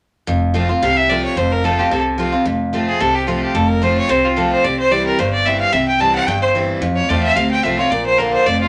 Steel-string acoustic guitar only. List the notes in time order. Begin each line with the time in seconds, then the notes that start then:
0.27 F2
0.54 F3 A3 C4 F4
0.69 C4 F4
0.82 C3
1.10 F3 A3 C4 F4
1.37 F2
1.64 F3 A3 C4 F4
1.79 C4 F4
1.91 C3
2.18 F3 A3 C4 F4
2.32 C4 F4
2.45 F2
2.73 F3 A3 C4 F4
3.00 C3
3.27 F3 A3 C4 F4
3.55 F2
3.82 F3 A3 C4 F4
4.09 C3
4.36 F3 A3 C4 F4
4.64 C3
4.90 E3 G3 C4 E4
5.19 G2
5.46 E3 G3 C4 E4
5.72 C3
6.00 E3 G3 C4 E4
6.28 G2
6.55 E3 G3 C4 E4
6.82 F2
7.09 F3 A3 C4 F4
7.36 C3
7.64 F3 A3 C4 F4
7.79 C4 F4
7.92 A#2
8.18 D3 A#3 D4 F4
8.46 F2